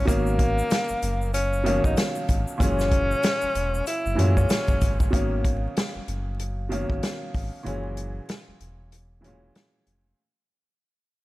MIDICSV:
0, 0, Header, 1, 5, 480
1, 0, Start_track
1, 0, Key_signature, 5, "minor"
1, 0, Tempo, 631579
1, 59, Time_signature, 4, 2, 24, 8
1, 8542, End_track
2, 0, Start_track
2, 0, Title_t, "Tenor saxophone"
2, 0, Program_c, 0, 66
2, 56, Note_on_c, 0, 58, 116
2, 987, Note_off_c, 0, 58, 0
2, 1016, Note_on_c, 0, 61, 94
2, 1378, Note_off_c, 0, 61, 0
2, 1404, Note_on_c, 0, 63, 90
2, 1490, Note_off_c, 0, 63, 0
2, 1974, Note_on_c, 0, 61, 120
2, 2906, Note_off_c, 0, 61, 0
2, 2939, Note_on_c, 0, 64, 99
2, 3299, Note_off_c, 0, 64, 0
2, 3325, Note_on_c, 0, 61, 90
2, 3870, Note_off_c, 0, 61, 0
2, 8542, End_track
3, 0, Start_track
3, 0, Title_t, "Upright piano"
3, 0, Program_c, 1, 0
3, 0, Control_c, 1, 64, 127
3, 39, Note_on_c, 1, 47, 77
3, 47, Note_on_c, 1, 51, 76
3, 54, Note_on_c, 1, 54, 74
3, 62, Note_on_c, 1, 58, 77
3, 69, Control_c, 1, 64, 0
3, 70, Note_on_c, 1, 61, 93
3, 181, Control_c, 1, 64, 127
3, 953, Note_off_c, 1, 47, 0
3, 957, Note_off_c, 1, 51, 0
3, 961, Note_off_c, 1, 54, 0
3, 965, Note_off_c, 1, 58, 0
3, 969, Note_off_c, 1, 61, 0
3, 1242, Note_on_c, 1, 47, 78
3, 1250, Note_on_c, 1, 51, 75
3, 1257, Note_on_c, 1, 54, 76
3, 1265, Note_on_c, 1, 58, 74
3, 1272, Note_on_c, 1, 61, 91
3, 1929, Note_off_c, 1, 47, 0
3, 1932, Note_off_c, 1, 51, 0
3, 1936, Note_off_c, 1, 54, 0
3, 1940, Note_off_c, 1, 58, 0
3, 1944, Note_off_c, 1, 61, 0
3, 1958, Note_on_c, 1, 46, 79
3, 1966, Note_on_c, 1, 52, 65
3, 1974, Note_on_c, 1, 54, 69
3, 1981, Note_on_c, 1, 56, 68
3, 1989, Control_c, 1, 64, 0
3, 1989, Note_on_c, 1, 61, 93
3, 2105, Control_c, 1, 64, 127
3, 2873, Note_off_c, 1, 46, 0
3, 2877, Note_off_c, 1, 52, 0
3, 2880, Note_off_c, 1, 54, 0
3, 2884, Note_off_c, 1, 56, 0
3, 2888, Note_off_c, 1, 61, 0
3, 3155, Note_on_c, 1, 45, 66
3, 3163, Note_on_c, 1, 52, 73
3, 3169, Note_on_c, 1, 54, 74
3, 3178, Note_on_c, 1, 56, 74
3, 3185, Note_on_c, 1, 61, 91
3, 3205, Note_on_c, 1, 46, 84
3, 3226, Note_off_c, 1, 45, 0
3, 3849, Note_off_c, 1, 52, 0
3, 3852, Note_off_c, 1, 54, 0
3, 3856, Note_off_c, 1, 56, 0
3, 3860, Note_off_c, 1, 61, 0
3, 3870, Note_off_c, 1, 46, 0
3, 3879, Note_on_c, 1, 47, 73
3, 3886, Note_on_c, 1, 51, 69
3, 3894, Note_on_c, 1, 54, 66
3, 3902, Note_on_c, 1, 58, 70
3, 3910, Control_c, 1, 64, 0
3, 3910, Note_on_c, 1, 61, 89
3, 4063, Control_c, 1, 64, 127
3, 4793, Note_off_c, 1, 47, 0
3, 4797, Note_off_c, 1, 51, 0
3, 4801, Note_off_c, 1, 54, 0
3, 4805, Note_off_c, 1, 58, 0
3, 4809, Note_off_c, 1, 61, 0
3, 5084, Note_on_c, 1, 47, 76
3, 5092, Note_on_c, 1, 51, 72
3, 5099, Note_on_c, 1, 54, 69
3, 5108, Note_on_c, 1, 58, 69
3, 5115, Note_on_c, 1, 61, 86
3, 5770, Note_off_c, 1, 47, 0
3, 5773, Note_off_c, 1, 51, 0
3, 5777, Note_off_c, 1, 54, 0
3, 5782, Note_off_c, 1, 58, 0
3, 5785, Note_off_c, 1, 61, 0
3, 5799, Note_on_c, 1, 46, 75
3, 5807, Note_on_c, 1, 52, 64
3, 5814, Note_on_c, 1, 54, 70
3, 5822, Note_on_c, 1, 56, 64
3, 5828, Control_c, 1, 64, 0
3, 5830, Note_on_c, 1, 61, 86
3, 5963, Control_c, 1, 64, 127
3, 6713, Note_off_c, 1, 46, 0
3, 6717, Note_off_c, 1, 52, 0
3, 6721, Note_off_c, 1, 54, 0
3, 6725, Note_off_c, 1, 56, 0
3, 6729, Note_off_c, 1, 61, 0
3, 6997, Note_on_c, 1, 45, 61
3, 7005, Note_on_c, 1, 52, 66
3, 7012, Note_on_c, 1, 54, 69
3, 7021, Note_on_c, 1, 56, 69
3, 7028, Note_on_c, 1, 61, 86
3, 7047, Note_on_c, 1, 46, 81
3, 7067, Note_off_c, 1, 45, 0
3, 7690, Note_off_c, 1, 52, 0
3, 7694, Note_off_c, 1, 54, 0
3, 7698, Note_off_c, 1, 56, 0
3, 7702, Note_off_c, 1, 61, 0
3, 7711, Note_off_c, 1, 46, 0
3, 7747, Control_c, 1, 64, 0
3, 8542, End_track
4, 0, Start_track
4, 0, Title_t, "Sub bass"
4, 0, Program_c, 2, 38
4, 57, Note_on_c, 2, 32, 106
4, 473, Note_off_c, 2, 32, 0
4, 682, Note_on_c, 2, 30, 51
4, 721, Note_off_c, 2, 30, 0
4, 779, Note_on_c, 2, 30, 95
4, 1372, Note_off_c, 2, 30, 0
4, 1399, Note_on_c, 2, 32, 84
4, 1484, Note_off_c, 2, 32, 0
4, 1740, Note_on_c, 2, 32, 87
4, 1864, Note_off_c, 2, 32, 0
4, 1976, Note_on_c, 2, 30, 116
4, 2392, Note_off_c, 2, 30, 0
4, 2601, Note_on_c, 2, 28, 51
4, 2640, Note_off_c, 2, 28, 0
4, 2699, Note_on_c, 2, 28, 103
4, 2906, Note_off_c, 2, 28, 0
4, 3083, Note_on_c, 2, 30, 96
4, 3166, Note_off_c, 2, 30, 0
4, 3179, Note_on_c, 2, 42, 102
4, 3386, Note_off_c, 2, 42, 0
4, 3560, Note_on_c, 2, 30, 98
4, 3644, Note_off_c, 2, 30, 0
4, 3662, Note_on_c, 2, 31, 105
4, 3868, Note_off_c, 2, 31, 0
4, 3899, Note_on_c, 2, 32, 110
4, 4314, Note_off_c, 2, 32, 0
4, 4523, Note_on_c, 2, 30, 50
4, 4561, Note_off_c, 2, 30, 0
4, 4619, Note_on_c, 2, 30, 91
4, 5212, Note_off_c, 2, 30, 0
4, 5241, Note_on_c, 2, 32, 83
4, 5325, Note_off_c, 2, 32, 0
4, 5582, Note_on_c, 2, 32, 94
4, 5704, Note_off_c, 2, 32, 0
4, 5819, Note_on_c, 2, 30, 110
4, 6234, Note_off_c, 2, 30, 0
4, 6442, Note_on_c, 2, 28, 48
4, 6481, Note_off_c, 2, 28, 0
4, 6539, Note_on_c, 2, 28, 98
4, 7228, Note_off_c, 2, 28, 0
4, 7499, Note_on_c, 2, 29, 89
4, 7706, Note_off_c, 2, 29, 0
4, 8542, End_track
5, 0, Start_track
5, 0, Title_t, "Drums"
5, 57, Note_on_c, 9, 36, 109
5, 62, Note_on_c, 9, 42, 84
5, 65, Note_on_c, 9, 82, 74
5, 133, Note_off_c, 9, 36, 0
5, 138, Note_off_c, 9, 42, 0
5, 141, Note_off_c, 9, 82, 0
5, 200, Note_on_c, 9, 82, 52
5, 276, Note_off_c, 9, 82, 0
5, 296, Note_on_c, 9, 36, 95
5, 296, Note_on_c, 9, 42, 70
5, 372, Note_off_c, 9, 36, 0
5, 372, Note_off_c, 9, 42, 0
5, 444, Note_on_c, 9, 82, 51
5, 520, Note_off_c, 9, 82, 0
5, 535, Note_on_c, 9, 82, 64
5, 539, Note_on_c, 9, 42, 109
5, 547, Note_on_c, 9, 38, 125
5, 611, Note_off_c, 9, 82, 0
5, 615, Note_off_c, 9, 42, 0
5, 623, Note_off_c, 9, 38, 0
5, 673, Note_on_c, 9, 82, 55
5, 749, Note_off_c, 9, 82, 0
5, 779, Note_on_c, 9, 42, 66
5, 779, Note_on_c, 9, 82, 52
5, 855, Note_off_c, 9, 42, 0
5, 855, Note_off_c, 9, 82, 0
5, 924, Note_on_c, 9, 82, 47
5, 1000, Note_off_c, 9, 82, 0
5, 1019, Note_on_c, 9, 82, 72
5, 1020, Note_on_c, 9, 42, 92
5, 1095, Note_off_c, 9, 82, 0
5, 1096, Note_off_c, 9, 42, 0
5, 1164, Note_on_c, 9, 82, 50
5, 1240, Note_off_c, 9, 82, 0
5, 1262, Note_on_c, 9, 42, 77
5, 1338, Note_off_c, 9, 42, 0
5, 1400, Note_on_c, 9, 36, 89
5, 1404, Note_on_c, 9, 82, 48
5, 1476, Note_off_c, 9, 36, 0
5, 1480, Note_off_c, 9, 82, 0
5, 1496, Note_on_c, 9, 82, 81
5, 1498, Note_on_c, 9, 42, 115
5, 1503, Note_on_c, 9, 38, 120
5, 1572, Note_off_c, 9, 82, 0
5, 1574, Note_off_c, 9, 42, 0
5, 1579, Note_off_c, 9, 38, 0
5, 1636, Note_on_c, 9, 82, 53
5, 1712, Note_off_c, 9, 82, 0
5, 1737, Note_on_c, 9, 42, 71
5, 1739, Note_on_c, 9, 82, 56
5, 1740, Note_on_c, 9, 36, 93
5, 1813, Note_off_c, 9, 42, 0
5, 1815, Note_off_c, 9, 82, 0
5, 1816, Note_off_c, 9, 36, 0
5, 1881, Note_on_c, 9, 82, 53
5, 1957, Note_off_c, 9, 82, 0
5, 1977, Note_on_c, 9, 36, 113
5, 1981, Note_on_c, 9, 42, 87
5, 1986, Note_on_c, 9, 82, 72
5, 2053, Note_off_c, 9, 36, 0
5, 2057, Note_off_c, 9, 42, 0
5, 2062, Note_off_c, 9, 82, 0
5, 2121, Note_on_c, 9, 82, 52
5, 2125, Note_on_c, 9, 38, 37
5, 2197, Note_off_c, 9, 82, 0
5, 2201, Note_off_c, 9, 38, 0
5, 2215, Note_on_c, 9, 42, 68
5, 2216, Note_on_c, 9, 36, 95
5, 2291, Note_off_c, 9, 42, 0
5, 2292, Note_off_c, 9, 36, 0
5, 2365, Note_on_c, 9, 82, 51
5, 2441, Note_off_c, 9, 82, 0
5, 2456, Note_on_c, 9, 82, 66
5, 2459, Note_on_c, 9, 42, 105
5, 2466, Note_on_c, 9, 38, 127
5, 2532, Note_off_c, 9, 82, 0
5, 2535, Note_off_c, 9, 42, 0
5, 2542, Note_off_c, 9, 38, 0
5, 2594, Note_on_c, 9, 82, 53
5, 2670, Note_off_c, 9, 82, 0
5, 2700, Note_on_c, 9, 42, 66
5, 2700, Note_on_c, 9, 82, 52
5, 2776, Note_off_c, 9, 42, 0
5, 2776, Note_off_c, 9, 82, 0
5, 2845, Note_on_c, 9, 82, 44
5, 2921, Note_off_c, 9, 82, 0
5, 2938, Note_on_c, 9, 82, 70
5, 2940, Note_on_c, 9, 42, 94
5, 3014, Note_off_c, 9, 82, 0
5, 3016, Note_off_c, 9, 42, 0
5, 3084, Note_on_c, 9, 82, 51
5, 3160, Note_off_c, 9, 82, 0
5, 3182, Note_on_c, 9, 42, 76
5, 3258, Note_off_c, 9, 42, 0
5, 3320, Note_on_c, 9, 36, 89
5, 3323, Note_on_c, 9, 82, 49
5, 3396, Note_off_c, 9, 36, 0
5, 3399, Note_off_c, 9, 82, 0
5, 3415, Note_on_c, 9, 82, 79
5, 3420, Note_on_c, 9, 42, 113
5, 3425, Note_on_c, 9, 38, 121
5, 3491, Note_off_c, 9, 82, 0
5, 3496, Note_off_c, 9, 42, 0
5, 3501, Note_off_c, 9, 38, 0
5, 3554, Note_on_c, 9, 82, 52
5, 3560, Note_on_c, 9, 36, 95
5, 3630, Note_off_c, 9, 82, 0
5, 3636, Note_off_c, 9, 36, 0
5, 3658, Note_on_c, 9, 82, 57
5, 3659, Note_on_c, 9, 42, 72
5, 3662, Note_on_c, 9, 36, 96
5, 3734, Note_off_c, 9, 82, 0
5, 3735, Note_off_c, 9, 42, 0
5, 3738, Note_off_c, 9, 36, 0
5, 3801, Note_on_c, 9, 36, 92
5, 3802, Note_on_c, 9, 82, 51
5, 3877, Note_off_c, 9, 36, 0
5, 3878, Note_off_c, 9, 82, 0
5, 3899, Note_on_c, 9, 36, 106
5, 3904, Note_on_c, 9, 42, 82
5, 3975, Note_off_c, 9, 36, 0
5, 3980, Note_off_c, 9, 42, 0
5, 4138, Note_on_c, 9, 36, 90
5, 4139, Note_on_c, 9, 42, 64
5, 4214, Note_off_c, 9, 36, 0
5, 4215, Note_off_c, 9, 42, 0
5, 4382, Note_on_c, 9, 42, 106
5, 4389, Note_on_c, 9, 38, 123
5, 4458, Note_off_c, 9, 42, 0
5, 4465, Note_off_c, 9, 38, 0
5, 4621, Note_on_c, 9, 42, 64
5, 4697, Note_off_c, 9, 42, 0
5, 4860, Note_on_c, 9, 42, 88
5, 4936, Note_off_c, 9, 42, 0
5, 5104, Note_on_c, 9, 42, 75
5, 5180, Note_off_c, 9, 42, 0
5, 5241, Note_on_c, 9, 36, 85
5, 5317, Note_off_c, 9, 36, 0
5, 5342, Note_on_c, 9, 42, 107
5, 5347, Note_on_c, 9, 38, 115
5, 5418, Note_off_c, 9, 42, 0
5, 5423, Note_off_c, 9, 38, 0
5, 5579, Note_on_c, 9, 46, 50
5, 5582, Note_on_c, 9, 36, 90
5, 5655, Note_off_c, 9, 46, 0
5, 5658, Note_off_c, 9, 36, 0
5, 5823, Note_on_c, 9, 42, 83
5, 5899, Note_off_c, 9, 42, 0
5, 6057, Note_on_c, 9, 42, 66
5, 6133, Note_off_c, 9, 42, 0
5, 6299, Note_on_c, 9, 42, 99
5, 6306, Note_on_c, 9, 38, 120
5, 6375, Note_off_c, 9, 42, 0
5, 6382, Note_off_c, 9, 38, 0
5, 6540, Note_on_c, 9, 42, 64
5, 6616, Note_off_c, 9, 42, 0
5, 6780, Note_on_c, 9, 42, 85
5, 6856, Note_off_c, 9, 42, 0
5, 7023, Note_on_c, 9, 42, 73
5, 7099, Note_off_c, 9, 42, 0
5, 7260, Note_on_c, 9, 42, 104
5, 7265, Note_on_c, 9, 38, 112
5, 7336, Note_off_c, 9, 42, 0
5, 7341, Note_off_c, 9, 38, 0
5, 7498, Note_on_c, 9, 42, 66
5, 7574, Note_off_c, 9, 42, 0
5, 8542, End_track
0, 0, End_of_file